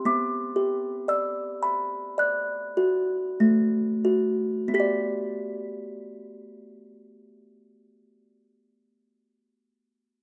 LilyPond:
\new Staff \with { instrumentName = "Music box" } { \time 4/4 \key g \major \tempo 4 = 44 << { d'''4 e'''4 fis'''4. r8 | <b g' d'' b'''>1 | } \\ { b8 g'8 d''8 b''8 d''8 fis'8 a8 fis'8 | r1 | } >> }